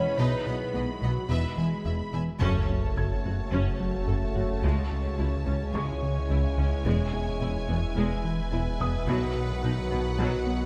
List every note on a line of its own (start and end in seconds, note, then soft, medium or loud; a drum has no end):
0.00 0.15 E3 medium
0.00 0.15 G#3 medium
0.00 2.41 B3 medium
0.00 0.19 C#4 medium
0.00 0.19 E4 medium
0.00 0.19 G#4 medium
0.00 2.41 B4 medium
0.00 0.16 C#5 loud
0.00 0.71 D#5 soft
0.00 1.54 F#5 soft
0.00 2.17 B5 medium
0.18 0.26 B1 medium
0.18 0.35 B2 medium
0.18 0.27 B2 medium
0.18 1.31 D#3 medium
0.18 1.29 F#3 medium
0.18 0.47 D#4 medium
0.18 0.84 B4 medium
0.18 0.45 B4 medium
0.18 0.45 D#5 medium
0.46 0.55 B1 soft
0.46 0.63 B2 medium
0.46 0.55 B2 soft
0.46 0.74 B3 medium
0.46 0.55 D#5 soft
0.46 0.55 F#5 soft
0.74 0.82 B1 soft
0.74 0.83 B2 soft
0.74 1.02 G#3 medium
0.74 0.91 B3 medium
0.74 0.83 D#5 soft
1.01 1.10 B1 soft
1.01 1.19 B2 medium
1.01 1.10 B2 soft
1.01 1.30 F#3 soft
1.01 1.29 F#4 medium
1.01 1.11 D#5 soft
1.01 1.11 F#5 soft
1.29 1.38 E1 medium
1.29 1.46 E2 medium
1.29 1.38 E2 medium
1.29 2.13 E3 medium
1.29 2.12 G#3 medium
1.29 2.14 G#3 medium
1.29 1.84 E4 medium
1.29 1.56 B4 medium
1.29 1.56 E5 medium
1.57 1.65 E1 soft
1.57 1.66 E2 soft
1.57 1.74 E3 medium
1.57 1.66 E5 soft
1.57 1.66 G#5 soft
1.85 1.93 E1 soft
1.85 1.94 E2 soft
1.85 2.02 E2 medium
1.85 1.93 E5 soft
2.13 2.21 E1 soft
2.13 2.21 E2 soft
2.13 2.30 E3 medium
2.13 2.22 E5 medium
2.13 2.21 G#5 soft
2.40 2.67 F#1 medium
2.40 4.65 F#1 medium
2.40 2.67 F#2 medium
2.40 2.58 F#2 loud
2.40 6.82 C#3 medium
2.40 4.59 A3 medium
2.40 4.60 A3 medium
2.40 2.67 C#4 medium
2.40 6.82 C#4 medium
2.40 4.59 F#4 medium
2.40 4.60 F#4 medium
2.40 7.92 C#5 medium
2.40 6.82 C#5 medium
2.40 5.70 A5 medium
2.40 sub drop medium
2.70 2.86 F#2 medium
2.97 3.05 F#1 soft
2.97 3.05 F#2 soft
2.97 3.14 F#2 medium
2.97 3.05 A4 soft
2.97 4.60 A4 soft
2.97 4.60 G#6 soft
3.24 3.33 F#1 soft
3.24 3.32 F#2 soft
3.24 3.42 F#2 medium
3.24 3.33 F#4 soft
3.52 3.60 F#1 medium
3.52 3.60 F#2 medium
3.52 3.69 F#2 medium
3.52 3.78 C#4 medium
3.80 3.97 F#3 medium
4.08 4.16 F#1 soft
4.08 4.16 F#2 soft
4.08 4.25 F#2 medium
4.08 4.16 A4 medium
4.35 4.43 F#1 soft
4.35 4.43 F#2 soft
4.35 4.53 F#2 medium
4.35 4.43 F#4 soft
4.63 4.71 C#2 medium
4.63 4.80 C#2 medium
4.63 6.87 C#2 medium
4.63 4.89 G#3 medium
4.63 9.08 G#3 medium
4.63 9.04 G#3 medium
4.63 9.04 E4 medium
4.63 9.08 E4 medium
4.91 5.08 C#2 medium
5.18 5.27 C#2 soft
5.18 5.36 C#2 medium
5.18 5.26 E4 soft
5.46 5.54 C#2 soft
5.46 5.64 C#2 medium
5.46 5.55 C#4 soft
5.74 5.82 C#2 medium
5.74 5.91 C#2 medium
5.74 6.00 G#3 medium
5.74 9.08 G#5 medium
5.74 7.37 C#6 medium
6.03 6.19 C#3 medium
6.30 6.38 C#2 soft
6.30 6.47 C#2 medium
6.30 6.38 E4 medium
6.57 6.65 C#2 soft
6.57 6.75 C#2 medium
6.57 6.66 C#4 medium
6.85 9.09 E1 medium
6.85 6.94 E1 medium
6.85 6.93 E2 medium
6.85 7.02 E2 medium
6.85 9.08 E3 medium
6.85 7.12 G#3 medium
6.85 10.66 B3 medium
6.85 9.08 E5 medium
7.13 7.30 E2 medium
7.13 8.76 G#4 soft
7.13 8.76 G#5 medium
7.41 7.49 E1 medium
7.41 7.58 E2 medium
7.41 7.49 E2 soft
7.41 7.49 E4 medium
7.69 7.77 E1 soft
7.69 7.85 E2 medium
7.69 7.77 E2 soft
7.69 7.77 B3 soft
7.96 8.05 E1 medium
7.96 8.13 E2 medium
7.96 8.04 E2 medium
7.96 8.23 G#3 medium
7.96 10.66 B4 medium
8.25 8.41 E3 medium
8.52 8.60 E1 medium
8.52 8.60 E2 medium
8.52 8.69 E2 medium
8.52 8.61 E4 medium
8.80 8.88 E1 soft
8.80 8.88 E2 medium
8.80 8.97 E2 medium
8.80 8.88 B3 medium
8.80 10.43 D#6 medium
9.08 10.66 B1 medium
9.08 9.16 B1 medium
9.08 9.25 B2 medium
9.08 9.16 B2 medium
9.08 10.66 D#3 medium
9.08 10.66 F#3 medium
9.08 9.34 F#3 medium
9.08 10.66 F#3 medium
9.08 10.66 F#4 medium
9.08 10.66 D#5 medium
9.08 10.66 F#5 medium
9.36 9.52 B2 medium
9.63 9.72 B1 medium
9.63 9.71 B2 medium
9.63 9.80 B2 medium
9.63 9.72 D#4 medium
9.91 9.99 B1 medium
9.91 9.99 B2 medium
9.91 10.08 B2 medium
9.91 9.99 B3 medium
10.19 10.27 B1 medium
10.19 10.27 B2 medium
10.19 10.36 B2 medium
10.19 10.45 F#3 medium
10.47 10.63 B3 medium